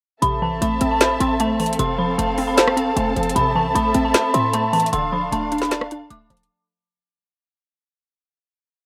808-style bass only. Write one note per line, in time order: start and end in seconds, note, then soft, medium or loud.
0.22 0.43 A1 loud
0.42 0.53 C2 loud
0.52 0.61 A1 loud
0.62 0.80 A1 loud
0.81 1.19 A1 loud
1.20 1.77 A1 loud
1.79 2.17 F1 loud
2.18 2.94 F1 loud
2.97 3.16 F1 loud
3.16 3.35 F1 loud
3.36 3.67 A1 loud
3.65 3.75 C2 loud
3.75 3.94 A1 loud
3.95 4.14 A1 loud
4.34 4.91 A2 loud
4.93 5.31 D1 loud
5.32 6.07 D1 loud
6.11 6.29 D1 loud
6.30 6.49 D1 loud